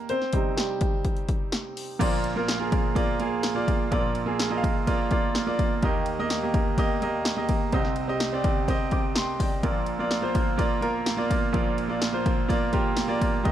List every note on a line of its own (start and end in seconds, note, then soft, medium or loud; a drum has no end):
0.00 0.11 D#3 soft
0.00 0.12 G3 soft
0.00 0.12 A#3 medium
0.00 0.12 A#4 medium
0.09 0.55 C4 medium
0.09 0.59 C5 medium
0.09 closed hi-hat medium
0.22 snare soft
0.33 0.66 C3 soft
0.33 0.57 G3 soft
0.33 0.66 D#4 medium
0.33 kick medium
0.33 closed hi-hat medium
0.57 1.50 G3 medium
0.57 1.49 G4 medium
0.57 snare loud
0.57 closed hi-hat medium
0.81 kick loud
0.81 closed hi-hat medium
1.05 kick medium
1.05 closed hi-hat medium
1.17 closed hi-hat soft
1.29 kick medium
1.29 closed hi-hat medium
1.52 snare loud
1.52 closed hi-hat medium
1.77 open hi-hat medium
1.99 3.87 A#1 medium
1.99 3.87 A#2 medium
1.99 2.34 A#3 medium
1.99 2.34 F4 medium
1.99 2.34 D5 loud
1.99 kick loud
1.99 crash medium
1.99 ride medium
2.24 ride medium
2.36 2.58 A#3 medium
2.36 2.58 F4 medium
2.36 2.59 A#4 medium
2.48 snare loud
2.48 ride medium
2.60 2.94 A#3 medium
2.60 2.94 F4 medium
2.60 2.94 G#4 medium
2.72 kick loud
2.72 ride medium
2.95 3.18 A#3 medium
2.95 3.18 F4 medium
2.95 3.18 D5 medium
2.95 kick medium
2.95 ride medium
3.20 3.53 A#3 medium
3.20 3.54 F4 medium
3.20 3.54 G#4 medium
3.20 ride medium
3.43 snare loud
3.43 ride medium
3.55 3.89 A#3 medium
3.55 3.89 F4 medium
3.55 3.89 D5 medium
3.68 kick medium
3.68 ride medium
3.91 5.78 A#1 medium
3.91 5.78 A#2 medium
3.91 4.24 A#3 medium
3.91 4.25 F4 medium
3.91 4.26 D5 loud
3.91 kick medium
3.91 ride medium
4.15 ride medium
4.26 4.49 A#3 medium
4.26 4.49 F4 medium
4.26 4.49 G#4 medium
4.39 snare loud
4.39 ride medium
4.50 4.84 A#3 medium
4.50 4.85 F4 medium
4.50 4.57 D#5 medium
4.57 4.88 F5 medium
4.64 kick loud
4.64 ride medium
4.87 5.09 A#3 medium
4.87 5.09 F4 medium
4.87 5.10 D5 medium
4.87 kick medium
4.87 ride medium
5.11 5.45 A#3 medium
5.11 5.45 F4 medium
5.11 5.45 D5 medium
5.11 kick medium
5.11 ride medium
5.35 snare loud
5.35 ride medium
5.47 5.80 A#3 medium
5.47 5.80 F4 medium
5.47 5.80 D5 loud
5.59 kick medium
5.59 ride medium
5.83 7.70 D#2 medium
5.83 7.70 D#3 medium
5.83 6.16 A#3 medium
5.83 6.17 G4 medium
5.83 6.17 D#5 medium
5.83 kick loud
5.83 ride medium
6.06 ride medium
6.19 6.41 A#3 medium
6.19 6.41 G4 medium
6.19 6.41 D#5 loud
6.30 snare loud
6.30 ride medium
6.43 6.76 A#3 medium
6.43 6.76 G4 medium
6.43 6.76 D#5 medium
6.54 kick loud
6.54 ride medium
6.78 7.00 A#3 medium
6.78 7.00 G4 medium
6.78 7.01 D#5 loud
6.78 kick medium
6.78 ride medium
7.02 7.35 A#3 medium
7.02 7.35 G4 medium
7.02 7.36 D#5 loud
7.02 ride medium
7.25 snare loud
7.25 ride medium
7.37 7.70 A#3 medium
7.37 7.71 G4 medium
7.37 7.71 D#5 medium
7.49 kick medium
7.49 ride medium
7.72 9.60 C2 medium
7.72 9.60 C3 medium
7.72 8.06 C4 medium
7.72 8.07 G4 medium
7.72 8.07 D#5 medium
7.72 kick medium
7.72 ride medium
7.85 snare soft
7.96 ride medium
8.08 8.31 C4 medium
8.08 8.31 G4 medium
8.08 8.31 D#5 medium
8.20 snare loud
8.20 ride medium
8.33 8.66 C4 medium
8.33 8.66 G4 medium
8.33 8.67 D5 medium
8.44 kick loud
8.44 ride medium
8.68 8.91 C4 medium
8.68 8.91 G4 medium
8.68 8.92 D#5 loud
8.68 kick medium
8.68 ride medium
8.91 9.16 G5 soft
8.91 9.15 D6 medium
8.91 kick medium
8.91 ride soft
9.16 9.40 G5 medium
9.16 9.39 C6 medium
9.16 snare loud
9.16 ride medium
9.40 9.63 D5 soft
9.40 9.86 G5 medium
9.40 kick medium
9.40 open hi-hat medium
9.40 ride medium
9.63 11.51 A#1 medium
9.63 11.51 A#2 medium
9.63 9.97 A#3 medium
9.63 9.98 F4 medium
9.63 9.98 D5 medium
9.63 kick loud
9.63 ride medium
9.86 ride medium
9.99 10.20 A#3 medium
9.99 10.21 F4 medium
9.99 10.22 D5 medium
10.11 snare loud
10.11 ride medium
10.21 10.56 A#3 medium
10.21 10.56 F4 medium
10.21 10.57 C5 medium
10.35 kick loud
10.35 ride medium
10.57 10.80 A#3 medium
10.57 10.80 F4 medium
10.57 10.81 D5 loud
10.57 kick medium
10.57 ride medium
10.81 11.15 A#3 medium
10.81 11.16 F4 medium
10.81 11.16 A#4 loud
10.81 ride soft
11.06 snare loud
11.06 ride medium
11.17 11.51 A#3 medium
11.17 11.51 F4 medium
11.17 11.52 D5 medium
11.31 kick medium
11.31 ride medium
11.53 13.40 A#1 medium
11.53 13.40 A#2 medium
11.53 11.86 A#3 medium
11.53 11.87 F4 medium
11.53 11.88 D5 medium
11.53 kick loud
11.53 ride medium
11.78 ride medium
11.88 12.11 A#3 medium
11.88 12.12 F4 medium
11.88 12.12 D5 medium
12.02 snare loud
12.02 ride medium
12.12 12.47 A#3 medium
12.12 12.47 F4 medium
12.12 12.47 C5 medium
12.26 kick loud
12.26 ride medium
12.48 12.71 A#3 loud
12.48 12.71 F4 medium
12.48 12.72 D5 loud
12.48 kick medium
12.48 ride medium
12.72 13.06 A#3 medium
12.72 13.07 F4 medium
12.72 13.07 G4 medium
12.72 kick medium
12.72 ride medium
12.97 snare loud
12.97 ride medium
13.08 13.42 A#3 medium
13.08 13.42 F4 medium
13.08 13.43 D5 loud
13.21 kick medium
13.21 ride medium
13.43 13.52 D#2 medium
13.43 13.52 D#3 medium
13.43 13.52 A#3 medium
13.43 13.52 G4 medium
13.43 13.52 D#5 loud
13.43 kick loud
13.43 ride medium